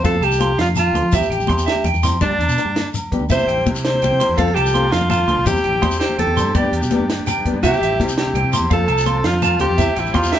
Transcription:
0.02 F2 C4 F4 A4 F5, muted steel-string acoustic guitar stroke, kick, closed hi-hat, muted conga
0.14 high conga
0.20 C2 G4 A5, closed hi-hat, low agogo
0.32 low conga, shekere
0.38 F3 C4 F4 A4 C6, closed hi-hat, muted conga, high conga, low agogo
0.58 F2 F4 F5, snare, closed hi-hat
0.68 high conga
0.75 F4 A5, closed hi-hat, muted conga, low agogo, shekere
0.86 low conga
0.93 D2 F3 C4 F4 A4 C6, closed hi-hat, high conga
1.02 F3
1.12 E2 G3 C4 E4 G4 E5, kick, closed hi-hat, muted conga, low agogo, shekere
1.21 high conga, low conga, shekere
1.30 A1 G5, closed hi-hat, low conga
1.38 low conga, shekere
1.47 E2 G3 C4 E4 G4 C6, kick, closed hi-hat, muted conga, high conga, low agogo
1.57 low conga, shekere
1.66 E5, snare, closed hi-hat, low conga, low agogo, shekere
1.71 G4
1.75 high conga
1.84 E2 G5, closed hi-hat, muted conga, low conga, shekere
1.94 E2, low conga, shekere
2.03 G3 C4 E4 G4 C6, snare, closed hi-hat, high conga, low conga, low agogo, shekere
2.12 F2
2.21 G2 G3 D4 G4 D5, muted steel-string acoustic guitar stroke, kick, closed hi-hat, muted conga, low conga, shekere
2.31 high conga
2.39 E2, closed hi-hat, high conga, low agogo
2.48 B2, shekere
2.57 G3 D4 G4, muted steel-string acoustic guitar stroke, closed hi-hat, high conga, low agogo, shekere
2.65 G2
2.76 snare, closed hi-hat, high conga
2.94 closed hi-hat, low conga, low agogo, shekere
3.11 G3 B3 D4 G4, kick, closed hi-hat, low conga
3.19 D2
3.29 C2 G3 C4 E4 G4 C5 E5, kick, closed hi-hat, muted conga, low agogo, shekere
3.38 high conga, low conga, shekere
3.47 A1 G5, closed hi-hat
3.57 low conga
3.66 C3 G3 E4 G4, muted steel-string acoustic guitar stroke, kick, closed hi-hat, muted conga, high conga, low agogo
3.75 shekere
3.85 C5, snare, closed hi-hat, low agogo
3.94 high conga
4.02 C2 G5, closed hi-hat, muted conga
4.11 C3, low conga
4.19 G3 C4 E4 G4 C6, snare, closed hi-hat, high conga, low agogo
4.29 E2
4.37 F2 F3 C4 F4 A4 F5, kick, closed hi-hat, muted conga
4.48 high conga
4.55 C2 G4 A5, closed hi-hat, low agogo
4.66 low conga, shekere
4.73 F3 C4 F4 A4 C6, closed hi-hat, high conga, low agogo
4.92 F2 F4 F5, snare, closed hi-hat
5.01 high conga
5.10 F4 A5, closed hi-hat, muted conga, low agogo, shekere
5.19 low conga
5.28 D2 F3 F4 C6, muted steel-string acoustic guitar stroke, closed hi-hat, high conga
5.36 B1
5.45 E2 G3 C4 E4 G4, muted clean electric guitar stroke, kick, closed hi-hat, muted conga, low agogo, shekere
5.55 high conga, low conga, shekere
5.64 A1 G5, closed hi-hat
5.73 low conga
5.82 E2 G3 C4 E4 G4 C6, kick, closed hi-hat, muted conga, high conga, low agogo
5.91 shekere
6.00 G4 C5, snare, closed hi-hat, low agogo
6.10 high conga, low conga
6.18 E2 A4 G5, closed hi-hat, muted conga
6.27 E2, low conga
6.37 G3 C4 G4 C6, snare, closed hi-hat, high conga, low agogo, shekere
6.45 G2
6.55 G2 G3 B3 D4 G4 D5, kick, closed hi-hat, muted conga
6.65 high conga
6.72 E2, closed hi-hat, low agogo
6.82 B2, low conga, shekere
6.91 G3 B3 D4 G4, closed hi-hat, muted conga, high conga, low agogo
7.00 G2
7.10 snare, closed hi-hat
7.19 high conga
7.27 G5, closed hi-hat, muted conga, low agogo, shekere
7.38 low conga
7.45 G3 B3 D4 G4, kick, closed hi-hat, high conga
7.54 G2
7.62 C2 G3 C4 E4 G4 E5, kick, closed hi-hat, muted conga, low agogo, shekere
7.73 high conga, low conga, shekere
7.81 A1 E5, closed hi-hat
7.92 low conga
7.98 C3 G3 C4 E4 G4, kick, closed hi-hat, muted conga, high conga, low agogo
8.08 shekere
8.18 G4, snare, closed hi-hat, low agogo
8.26 high conga, low conga
8.34 C2 G5, closed hi-hat, muted conga
8.43 C3, low conga
8.52 G3 E4 G4 C6, muted steel-string acoustic guitar stroke, closed hi-hat, high conga, low agogo, shekere
8.59 E2
8.70 F2 F3 F4 A4 F5, muted steel-string acoustic guitar stroke, kick, closed hi-hat, muted conga
8.79 high conga
8.87 C2 A5, closed hi-hat, low agogo
8.98 shekere
9.05 F3 C4 F4 A4 C6, closed hi-hat, muted conga, high conga, low agogo
9.23 F2 F4 F5, snare, closed hi-hat
9.34 high conga
9.42 F4 A5, closed hi-hat, muted conga, low agogo, shekere
9.52 low conga
9.58 D2 F3 C4 F4 G4 A4 C6, closed hi-hat, high conga
9.70 F2
9.77 E2 C4 E4 G4 E5, muted steel-string acoustic guitar stroke, kick, closed hi-hat, muted conga, low agogo, shekere
9.88 high conga
9.96 A1 E4 G5, closed hi-hat, shekere
10.05 low conga, shekere
10.12 E2 G3 C4 E4 F4 G4 C6, kick, closed hi-hat, muted conga, high conga, low conga, low agogo
10.23 shekere
10.32 G4 E5, snare, closed hi-hat, low agogo

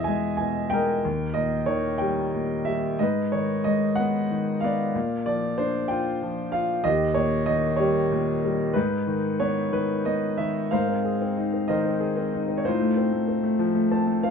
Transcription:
Already playing: E2 B2 E3 G#4 D#5 E5
0.04 G#3 G#5
0.37 B2 G#5
0.70 G#3 A#4 G5
1.05 D#2
1.34 A#2 D#5
1.66 D#3 C#5
1.98 G3 G5
2.34 A#2
2.65 G3 E5
2.99 G#2 B4 D#5
3.32 D#3 C#5
3.64 G#3 D#5
3.95 B3 F#5
4.31 D#3
4.60 B3 D5 F5
4.95 A#2
5.26 F3 D5
5.58 D4 C5
5.88 F4 G5
6.23 F3
6.52 F4 F5
6.84 D#2 G4 D#5
7.14 A#2 C#5
7.46 D#3 D#5
7.77 G3 G4 C#5
8.12 A#2
8.45 G3
8.73 G#2 D#4 B4
9.07 D#3
9.40 B3 C#5
9.72 D#3 B4
10.05 B3 D#5
10.37 D#3 E5
10.71 G#2 A#4 C5 F5
10.89 C4
11.05 G#4
11.22 C4
11.37 D#4
11.53 C4
11.68 D#3 A#4 C5 D#5
11.85 C4
12.00 G#4
12.17 C4
12.33 D#4
12.48 C4
12.58 C#5
12.65 A2 D#4 F4 C5
12.82 A3
12.97 C4
13.13 A3
13.28 C4
13.43 A3
13.59 F3
13.75 A3
13.91 C4 A5
14.07 A3
14.23 C4 F5

